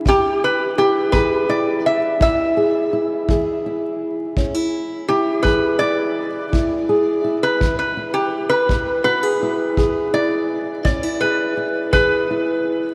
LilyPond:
<<
  \new Staff \with { instrumentName = "Resonator guitar played with a steel bar" } { \time 12/8 \key e \mixolydian \tempo 4. = 56 g'8 b'8 g'8 b'8 d''8 e''8 e''4 r2 | r4 g'8 b'8 d''2~ d''16 b'8 b'8 g'8 b'16~ | b'8 b'8 r4 d''4 d''8 b'4 b'4. | }
  \new Staff \with { instrumentName = "Steel-string acoustic guitar" } { \time 12/8 \key e \mixolydian << { e'4 e'8 gis'8 e'4 e'8 gis'8 e'8 gis'8 e'4 | cis'16 e'8. e'8 gis'8 e'4 e'8 gis'8 e'4 e'4 | e'8 fis'16 gis'16 e'8 gis'8 e'4 cis'16 e'16 gis'8 e'8 gis'8 e'4 | } \\ { e,4 r8 e4 r8 e,4 r8 e4 r8 | e,4 r8 e4 r8 e,4 r8 e4 r8 | e,4 r8 e4 r8 e,4 r8 e4 r8 | } >> }
  \new DrumStaff \with { instrumentName = "Drums" } \drummode { \time 12/8 bd4. bd4. bd4. bd4. | bd4. bd4. bd4. bd4. | bd4. bd4. bd4. bd4. | }
>>